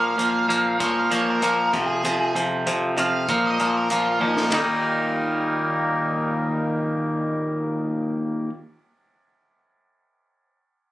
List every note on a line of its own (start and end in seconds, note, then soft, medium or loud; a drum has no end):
0.00 0.16 A#2 medium
0.00 0.18 F3 medium
0.00 0.17 A#3 medium
0.00 0.79 F5 medium
0.17 0.47 A#2 medium
0.17 0.49 F3 medium
0.17 0.48 A#3 medium
0.17 closed hi-hat medium
0.49 0.78 A#2 medium
0.49 0.79 F3 medium
0.49 0.79 A#3 medium
0.49 closed hi-hat medium
0.79 1.10 A#2 medium
0.79 1.10 F3 medium
0.79 1.11 A#3 medium
0.79 kick medium
0.79 closed hi-hat medium
0.84 0.97 C#5 medium
0.99 1.12 F5 medium
1.11 1.41 A#2 medium
1.11 1.41 F3 medium
1.11 1.42 A#3 medium
1.11 1.28 C#5 medium
1.11 closed hi-hat soft
1.30 1.74 A#4 medium
1.42 1.71 A#2 medium
1.42 1.72 F3 medium
1.42 1.72 A#3 medium
1.42 closed hi-hat medium
1.73 2.03 F2 medium
1.73 2.04 C3 medium
1.73 2.04 F3 medium
1.73 2.35 G#4 medium
1.73 kick medium
1.73 closed hi-hat soft
2.04 2.34 F2 medium
2.04 2.34 C3 medium
2.04 2.35 F3 medium
2.04 closed hi-hat medium
2.35 2.65 F2 medium
2.35 2.66 C3 medium
2.35 2.66 F3 medium
2.35 closed hi-hat medium
2.66 2.96 F2 medium
2.66 2.96 C3 medium
2.66 2.96 F3 medium
2.66 closed hi-hat medium
2.97 3.26 F2 medium
2.97 3.26 C3 medium
2.97 3.26 F3 medium
2.97 3.29 F5 medium
2.97 closed hi-hat soft
3.29 3.58 A#2 medium
3.29 3.59 F3 medium
3.29 3.59 A#3 medium
3.29 3.44 F5 medium
3.29 kick medium
3.29 closed hi-hat medium
3.46 3.75 D#5 medium
3.59 3.89 A#2 medium
3.59 3.90 F3 medium
3.59 3.90 A#3 medium
3.59 closed hi-hat soft
3.77 3.91 A#4 medium
3.90 4.19 A#2 medium
3.90 4.20 F3 medium
3.90 4.20 A#3 medium
3.90 4.21 F4 medium
3.90 closed hi-hat medium
4.20 4.50 A#2 medium
4.20 4.50 F3 medium
4.20 4.50 A#3 medium
4.20 4.52 D#4 medium
4.20 kick soft
4.37 snare medium
4.51 8.48 D#2 medium
4.51 8.49 A#2 medium
4.51 8.49 D#3 medium
4.51 8.50 G3 medium
4.51 8.50 A#3 medium
4.51 kick medium
4.51 snare medium
4.51 ride bell medium
4.55 8.50 D#4 medium